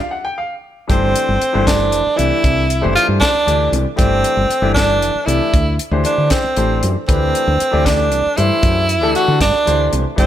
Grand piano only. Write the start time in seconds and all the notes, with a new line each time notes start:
0.01 F5
0.11 F#5
0.25 G5
0.38 F5
0.88 E3 A3 D4 G4 C5
1.53 E3 A3 D4 G4 C5
2.16 E3 A3 D4 G4 D5
2.81 E3 A3 D4 G4 C5
3.46 E3 A3 D4 G4 D5
3.96 E3 A3 D4 G4 D5
4.62 E3 A3 D4 G4 D5
5.26 E3 A3 D4 G4 D5
5.91 E3 A3 D4 G4 C5
6.57 E3 A3 D4 G4 C5
7.08 E3 A3 D4 G4 B4
7.71 E3 A3 D4 G4 D5
8.36 E3 A3 D4 G4 C5
9.01 E3 A3 D4 G4 A4
9.65 E3 A3 D4 G4 C5
10.16 E3 A3 D4 G4 D5